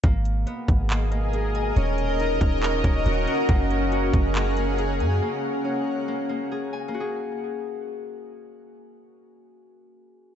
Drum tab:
HH |xxxxxxxx|xxxxxxxx|xxxxxxxx|--------|
CP |----x---|----x---|----x---|--------|
BD |o--o----|---o-o--|o--o----|--------|

HH |--------|--------|
CP |--------|--------|
BD |--------|--------|